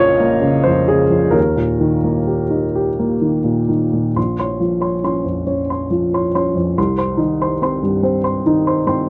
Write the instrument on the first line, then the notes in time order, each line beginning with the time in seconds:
upright piano
Already playing: A#1 F2 C#3 A#3 C#4 C5 C#5 D#5 F5
0.00 F4
0.20 A#3
0.42 C#3
0.64 F2 C5
0.88 C#3 G#4
1.10 F2
1.31 D#2 A#4
1.56 A#2
1.80 D#3
2.04 A#3
2.27 G4
2.50 D#4
2.75 G4
2.99 A#3
3.21 D#3
3.44 A#2
3.69 D#3
3.93 A#2
4.16 A#1 C6
4.39 C#5 C6
4.60 F3 F4
4.80 C#5 C6
5.04 C#4 C#5 C6
5.24 F2
5.47 C#4 C#5
5.70 C#5 C6
5.90 F3 F4
6.14 C#5 C6
6.35 C#4 C#5 C6
6.55 F2
6.78 C2 C6
6.97 C5 C6
7.17 D#3 D#4
7.41 C5 C6
7.62 C4 C5 C6
7.82 G2
8.03 C4 C5
8.24 C5 C6
8.46 D#3 D#4
8.67 C5 C6
8.87 C4 C5 C6